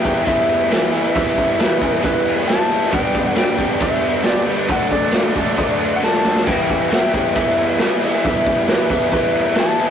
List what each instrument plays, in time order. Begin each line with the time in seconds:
Already playing: overdriven electric guitar E3, transistor combo organ G4 B4 E5, electric slide guitar G5
0.03 overdriven electric guitar G3 B3 E4, kick, crash
0.24 overdriven electric guitar E3 G3 B3 E4, electric slide guitar E5, kick, crash
0.50 crash
0.70 overdriven electric guitar E3 G3 B3 E4, snare, crash
0.91 overdriven electric guitar G3 B3 E4, crash
1.14 overdriven electric guitar E3 G3 B3 E4, electric slide guitar E5, kick, crash
1.38 kick, crash
1.58 overdriven electric guitar E3 G3 B3 E4, electric slide guitar B4, snare, crash
1.79 overdriven electric guitar G3 B3 E4, kick, crash
2.01 overdriven electric guitar E3 G3 B3 E4, kick, crash
2.05 electric slide guitar B4
2.27 crash
2.45 overdriven electric guitar E3 G3 B3 E4, electric slide guitar A5
2.49 snare, crash
2.68 overdriven electric guitar G3 B3 E4, crash
2.83 snare
2.90 overdriven electric guitar G2 D3 G3 B3, transistor combo organ G4 B4 D5, kick, crash
2.94 overdriven electric guitar D4, electric slide guitar G5
3.15 kick, crash
3.34 overdriven electric guitar D3 G3 B3 D4, electric slide guitar G5, snare, crash
3.56 overdriven electric guitar G3 B3 D4, kick, crash
3.79 overdriven electric guitar D3 G3 B3 D4, electric slide guitar E5, kick, crash
4.03 crash
4.23 overdriven electric guitar G2 D3 G3 B3 D4, electric slide guitar D5, snare, crash
4.46 overdriven electric guitar G3 B3 D4, crash
4.68 overdriven electric guitar D3 F#3 A3, transistor combo organ F#4 A4 D5, kick, crash
4.72 overdriven electric guitar D4, electric slide guitar F#5
4.91 electric slide guitar D5, kick, crash
5.12 overdriven electric guitar D3 F#3 A3 D4, snare, crash
5.34 overdriven electric guitar F#3 A3 D4, kick, crash
5.55 overdriven electric guitar D3 F#3 A3 D4, kick, crash
5.81 crash
5.96 overdriven electric guitar D3, electric slide guitar F#5
6.01 overdriven electric guitar F#3 A3 D4, electric slide guitar A5, snare
6.14 snare
6.23 overdriven electric guitar F#3 A3 D4, snare
6.36 snare
6.46 overdriven electric guitar E3 G3 B3 E4, transistor combo organ G4 B4, electric slide guitar G5, kick, crash
6.50 transistor combo organ E5
6.70 kick, crash
6.90 overdriven electric guitar E3 G3 B3 E4, snare, crash
6.95 electric slide guitar G5
7.14 overdriven electric guitar G3 B3 E4, kick, crash
7.35 overdriven electric guitar E3 G3 B3 E4, electric slide guitar E5, kick, crash
7.58 crash
7.79 overdriven electric guitar E3 G3 B3, snare, crash
7.83 overdriven electric guitar E4
8.02 overdriven electric guitar G3 B3 E4, crash
8.14 snare
8.24 overdriven electric guitar E3 G3 B3, electric slide guitar E5, kick, crash
8.29 overdriven electric guitar E4
8.46 kick, crash
8.68 overdriven electric guitar E3 G3, electric slide guitar B4, snare, crash
8.72 overdriven electric guitar B3 E4
8.89 overdriven electric guitar B3 E4, kick, crash
8.94 overdriven electric guitar G3
9.12 overdriven electric guitar E3 G3 B3 E4, electric slide guitar B4, kick, crash
9.35 crash
9.55 overdriven electric guitar E3 G3, snare, crash
9.59 overdriven electric guitar B3 E4, electric slide guitar A5
9.79 overdriven electric guitar G3 B3 E4, crash